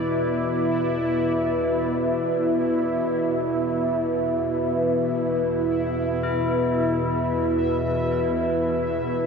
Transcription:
0.00 9.26 E2 medium
0.00 9.26 B2 medium
0.00 9.26 E4 medium
0.00 3.40 B4 medium
0.00 9.26 B4 medium
0.00 5.13 D5 medium
0.00 9.26 E5 medium
5.04 9.26 E5 medium
6.23 9.26 E4 medium

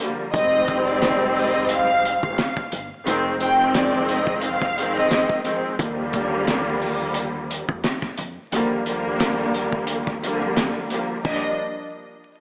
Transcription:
0.00 0.32 D3 medium
0.00 0.32 F3 medium
0.00 0.32 G3 medium
0.00 0.32 A#3 medium
0.32 2.19 F1 loud
0.32 2.55 D#3 loud
0.32 2.55 G3 loud
0.32 2.56 G#3 loud
0.32 0.83 D#5 loud
0.32 kick loud
0.32 closed hi-hat medium
0.37 2.56 C4 loud
0.68 kick medium
0.68 closed hi-hat medium
0.87 1.33 D5 medium
1.02 snare loud
1.02 closed hi-hat medium
1.35 1.66 D#5 medium
1.35 open hi-hat medium
1.69 2.20 F5 medium
1.69 closed hi-hat medium
2.05 closed hi-hat medium
2.22 2.36 G1 medium
2.22 2.53 F5 medium
2.22 kick medium
2.38 snare loud
2.38 closed hi-hat loud
2.57 kick medium
2.72 2.88 G1 medium
2.72 closed hi-hat medium
3.05 4.96 F1 loud
3.05 3.38 D#3 loud
3.05 3.38 F3 medium
3.05 3.38 G#3 medium
3.05 3.39 C4 loud
3.05 closed hi-hat medium
3.39 4.66 D#3 loud
3.39 4.67 F3 loud
3.39 4.67 G#3 loud
3.39 4.67 C4 loud
3.39 3.72 G5 medium
3.39 closed hi-hat medium
3.74 4.07 D5 medium
3.74 snare loud
3.74 closed hi-hat medium
4.09 4.40 D#5 medium
4.09 closed hi-hat medium
4.27 kick medium
4.41 4.93 F5 medium
4.41 closed hi-hat medium
4.62 kick medium
4.62 snare soft
4.77 5.40 D#3 loud
4.77 5.40 F3 medium
4.77 5.41 G#3 medium
4.77 5.41 C4 loud
4.77 closed hi-hat medium
4.96 5.25 G1 loud
4.96 5.27 D#5 medium
5.11 snare loud
5.11 closed hi-hat loud
5.29 kick medium
5.43 5.76 D#3 medium
5.43 5.76 F3 medium
5.43 5.77 G#3 medium
5.43 5.77 C4 medium
5.43 closed hi-hat medium
5.78 7.64 D#2 loud
5.78 8.00 D3 loud
5.78 8.00 F3 loud
5.78 8.00 G3 loud
5.78 8.01 A#3 loud
5.78 kick loud
5.78 closed hi-hat medium
6.13 kick medium
6.13 closed hi-hat medium
6.47 snare loud
6.47 closed hi-hat medium
6.82 open hi-hat medium
7.14 closed hi-hat medium
7.51 closed hi-hat medium
7.69 7.82 F2 medium
7.69 kick loud
7.84 snare loud
7.84 closed hi-hat loud
8.02 kick medium
8.02 snare soft
8.17 8.34 F2 loud
8.17 closed hi-hat medium
8.52 10.37 D#2 loud
8.52 8.83 D3 loud
8.52 8.83 F3 medium
8.52 8.84 G3 medium
8.52 8.85 A#3 loud
8.52 closed hi-hat medium
8.84 10.12 D3 loud
8.84 10.12 F3 loud
8.84 10.12 G3 loud
8.84 10.12 A#3 loud
8.84 closed hi-hat medium
9.20 snare loud
9.20 closed hi-hat medium
9.54 closed hi-hat medium
9.72 kick medium
9.87 closed hi-hat medium
10.07 kick loud
10.07 snare soft
10.21 10.85 D3 loud
10.21 10.85 F3 medium
10.21 10.86 G3 medium
10.21 10.86 A#3 loud
10.21 closed hi-hat medium
10.41 10.70 F2 medium
10.56 snare loud
10.56 closed hi-hat medium
10.90 11.22 D3 medium
10.90 11.23 F3 medium
10.90 11.23 G3 medium
10.90 11.23 A#3 medium
10.90 closed hi-hat medium
11.24 11.57 D#2 loud
11.24 11.51 F3 medium
11.24 11.51 G3 medium
11.24 11.51 A#3 medium
11.24 11.51 D4 loud
11.24 11.57 D#5 medium
11.24 kick loud
11.24 floor tom loud
11.24 china medium

